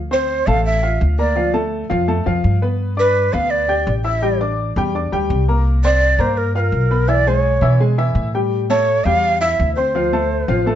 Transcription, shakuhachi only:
0.13 0.48 C5 medium
0.47 0.65 F5 loud
0.65 0.99 E5 medium
1.19 1.52 D5 medium
2.99 3.35 B4 medium
3.33 3.52 F5 loud
3.50 3.87 D5 medium
4.05 4.38 E5 medium
5.85 6.22 D5 loud
6.21 6.39 C5 medium
6.37 6.55 A#4 medium
6.56 7.10 A#4 medium
6.56 6.61 B4 medium
7.09 7.29 D5 loud
7.28 7.81 C#5 medium
8.70 9.06 C#5 loud
9.05 9.40 F5 loud
9.41 9.74 E5 loud
9.75 10.75 C5 medium

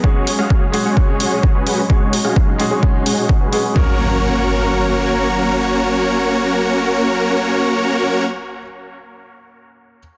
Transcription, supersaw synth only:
0.04 0.30 G#3 medium
0.04 0.30 C#4 medium
0.04 0.30 F#4 medium
0.04 0.30 G#4 medium
0.04 0.30 C#5 loud
0.39 0.65 G#3 medium
0.39 0.65 C#4 medium
0.39 0.65 F#4 medium
0.39 0.65 G#4 medium
0.39 0.65 F5 loud
0.85 1.17 G#3 medium
0.85 1.17 C#4 medium
0.85 1.17 F#4 medium
0.85 1.17 G#4 medium
0.85 1.17 C#5 loud
1.20 1.52 G#3 loud
1.20 1.52 C#4 medium
1.20 1.52 F#4 medium
1.20 1.52 G#4 medium
1.20 1.52 C#5 loud
1.55 1.81 G#3 medium
1.55 1.81 C#4 medium
1.55 1.81 F#4 medium
1.55 1.81 G#4 medium
1.55 1.81 B4 medium
1.90 2.16 G#3 medium
1.90 2.16 C#4 medium
1.90 2.16 F#4 medium
1.90 2.16 G#4 medium
1.90 2.16 C#5 loud
2.25 2.51 G#3 loud
2.25 2.51 C#4 medium
2.25 2.51 F#4 medium
2.25 2.51 G#4 medium
2.25 2.51 F5 loud
2.71 3.03 G#3 loud
2.71 3.03 C#4 medium
2.71 3.03 F#4 medium
2.71 3.03 G#4 medium
2.71 3.03 C#5 loud
3.06 3.38 G#3 loud
3.06 3.38 C#4 medium
3.06 3.38 F#4 medium
3.06 3.38 G#4 medium
3.06 3.38 C#5 loud
3.41 3.67 G#3 medium
3.41 3.67 C#4 medium
3.41 3.67 F#4 medium
3.41 3.67 G#4 medium
3.41 3.67 B4 medium
3.76 8.24 A#3 medium
3.76 8.24 C#4 medium
3.76 8.24 F#4 medium
3.76 8.24 A#4 medium
3.76 8.24 C#5 medium

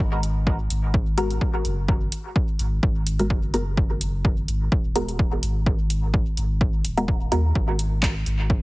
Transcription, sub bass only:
0.00 0.67 G#1 loud
0.70 1.38 G#1 medium
1.65 2.09 F#1 medium
2.59 2.79 G#1 medium
2.83 3.32 G#1 medium
3.30 4.45 F#1 medium
4.48 4.68 G#1 medium
4.72 5.40 D#1 medium
5.43 6.23 G#1 medium
6.37 6.82 G#1 medium
6.85 7.29 D#1 loud
7.32 7.52 D#2 medium
7.55 8.23 G#1 loud
8.26 8.62 G#1 medium

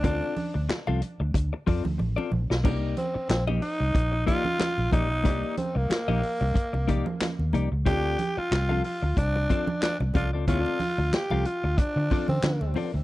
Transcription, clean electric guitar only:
0.03 0.34 C4 medium
0.03 0.34 F4 medium
0.03 0.34 A4 medium
0.03 0.35 D5 medium
0.54 muted clean electric guitar stroke soft
0.69 muted clean electric guitar stroke soft
0.87 1.00 C4 medium
0.87 1.01 F4 medium
0.87 1.02 A4 medium
0.87 1.02 F5 medium
1.02 muted clean electric guitar stroke soft
1.20 muted clean electric guitar stroke medium
1.34 muted clean electric guitar stroke soft
1.53 muted clean electric guitar stroke soft
1.67 1.85 C4 medium
1.67 1.85 F4 medium
1.67 1.84 A4 medium
1.67 1.83 D5 medium
1.84 muted clean electric guitar stroke soft
1.98 muted clean electric guitar stroke soft
2.16 2.30 C4 medium
2.16 2.31 F4 medium
2.16 2.31 A4 medium
2.16 2.31 D5 medium
2.31 muted clean electric guitar stroke soft
2.50 muted clean electric guitar stroke soft
2.64 2.95 A#3 medium
2.64 2.95 D#4 medium
2.64 2.95 G4 medium
2.64 2.95 D5 medium
3.14 muted clean electric guitar stroke soft
3.29 muted clean electric guitar stroke soft
3.47 3.61 A#3 medium
3.47 3.61 D#4 medium
3.47 3.62 G4 medium
3.47 3.62 D#5 medium
3.62 muted clean electric guitar stroke soft
3.80 muted clean electric guitar stroke soft
3.94 muted clean electric guitar stroke soft
4.12 muted clean electric guitar stroke soft
4.26 4.45 A#3 medium
4.26 4.45 D#4 medium
4.26 4.44 G4 medium
4.26 4.44 D5 medium
4.45 muted clean electric guitar stroke soft
4.59 muted clean electric guitar stroke medium
4.92 5.07 A#3 medium
4.92 5.07 D#4 medium
4.92 5.07 G4 medium
4.92 5.08 D5 medium
5.11 muted clean electric guitar stroke soft
5.24 5.55 A#3 medium
5.24 5.55 D#4 medium
5.24 5.55 G4 loud
5.24 5.56 D5 loud
5.75 muted clean electric guitar stroke soft
5.90 muted clean electric guitar stroke soft
6.08 6.21 A#3 medium
6.08 6.22 D#4 medium
6.08 6.22 G4 medium
6.08 6.23 D#5 medium
6.22 muted clean electric guitar stroke soft
6.41 muted clean electric guitar stroke soft
6.54 muted clean electric guitar stroke soft
6.73 muted clean electric guitar stroke soft
6.88 7.06 A#3 medium
6.88 7.07 D#4 medium
6.88 7.06 G4 loud
6.88 7.05 D5 medium
7.06 muted clean electric guitar stroke medium
7.21 muted clean electric guitar stroke soft
7.53 7.68 A#3 medium
7.53 7.68 D#4 medium
7.53 7.68 G4 medium
7.53 7.69 D5 medium
7.72 muted clean electric guitar stroke soft
7.86 8.16 C4 medium
7.86 8.17 F4 loud
7.86 8.17 A4 medium
7.86 8.17 D5 medium
8.37 muted clean electric guitar stroke medium
8.52 muted clean electric guitar stroke medium
8.69 8.83 C4 medium
8.69 8.84 F4 medium
8.69 8.84 A4 medium
8.69 8.84 F5 medium
8.84 muted clean electric guitar stroke soft
9.02 muted clean electric guitar stroke soft
9.18 muted clean electric guitar stroke soft
9.36 muted clean electric guitar stroke soft
9.50 9.68 C4 medium
9.50 9.68 F4 medium
9.50 9.68 A4 medium
9.50 9.67 D5 medium
9.68 muted clean electric guitar stroke medium
9.82 muted clean electric guitar stroke soft
10.01 muted clean electric guitar stroke medium
10.15 10.29 C4 medium
10.15 10.29 F4 medium
10.15 10.29 A4 medium
10.15 10.30 D5 medium
10.33 10.45 C4 soft
10.33 10.45 F4 medium
10.33 10.45 A4 medium
10.33 10.44 D5 medium
10.47 10.60 B3 medium
10.47 10.60 E4 medium
10.47 10.61 G#4 loud
10.47 10.61 C#5 medium
10.60 10.78 C4 medium
10.60 10.78 F4 medium
10.60 10.78 A4 loud
10.60 10.79 D5 medium
10.98 muted clean electric guitar stroke medium
11.13 muted clean electric guitar stroke soft
11.31 11.45 C4 medium
11.31 11.46 F4 medium
11.31 11.46 A4 medium
11.31 11.45 F5 medium
11.46 muted clean electric guitar stroke soft
11.64 muted clean electric guitar stroke medium
11.79 muted clean electric guitar stroke soft
11.97 muted clean electric guitar stroke soft
12.11 12.29 C4 medium
12.11 12.29 F4 medium
12.11 12.29 A4 medium
12.11 12.28 D5 loud
12.29 muted clean electric guitar stroke soft
12.44 muted clean electric guitar stroke soft
12.76 12.90 C4 medium
12.76 12.90 F4 medium
12.76 12.91 A4 medium
12.76 12.91 D5 medium
12.94 muted clean electric guitar stroke soft

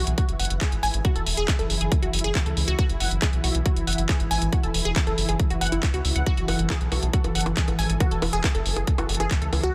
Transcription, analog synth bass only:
0.07 0.14 B1 medium
0.29 0.35 F#1 medium
0.40 0.46 F#1 loud
0.50 0.57 F#1 medium
0.72 0.79 G#1 medium
0.83 0.90 G#1 loud
0.94 1.01 G#1 medium
1.16 1.22 E1 medium
1.26 1.33 E1 loud
1.37 1.44 E1 medium
1.59 1.66 F#1 medium
1.70 1.77 F#1 loud
1.81 1.88 F#1 medium
2.03 2.09 F#1 medium
2.13 2.20 F#1 loud
2.24 2.31 F#1 medium
2.46 2.53 C#2 medium
2.57 2.64 C#2 loud
2.68 2.75 C#2 medium
2.90 2.96 F#1 medium
3.00 3.07 F#1 loud
3.11 3.18 F#1 medium
3.33 3.40 B1 medium
3.44 3.51 B1 loud
3.55 3.62 B1 medium
3.76 3.83 F#1 medium
3.87 3.94 F#1 loud
3.98 4.05 F#1 medium
4.20 4.27 G#1 medium
4.31 4.38 G#1 loud
4.42 4.48 G#1 medium
4.63 4.70 E1 medium
4.74 4.81 E1 loud
4.85 4.92 E1 loud
5.07 5.14 F#1 medium
5.18 5.25 F#1 loud
5.29 5.35 F#1 medium
5.50 5.57 F#1 medium
5.61 5.68 F#1 loud
5.72 5.79 F#1 medium
5.94 6.01 C#2 medium
6.05 6.12 C#2 loud
6.16 6.22 C#2 medium
6.37 6.44 F#1 medium
6.48 6.55 F#1 loud
6.59 6.66 F#1 medium
6.81 6.88 B1 medium
6.92 6.98 B1 loud
7.03 7.09 B1 medium
7.24 7.31 F#1 medium
7.35 7.42 F#1 loud
7.46 7.53 F#1 medium
7.68 7.75 G#1 medium
7.79 7.85 G#1 loud
7.90 7.96 G#1 medium
8.11 8.18 E1 medium
8.22 8.29 E1 loud
8.33 8.40 E1 loud
8.55 8.62 F#1 medium
8.66 8.72 F#1 loud
8.77 8.83 F#1 medium
8.98 9.05 F#1 medium
9.09 9.16 F#1 loud
9.20 9.27 F#1 medium
9.42 9.48 C#2 medium
9.53 9.59 C#2 loud
9.63 9.70 C#2 medium

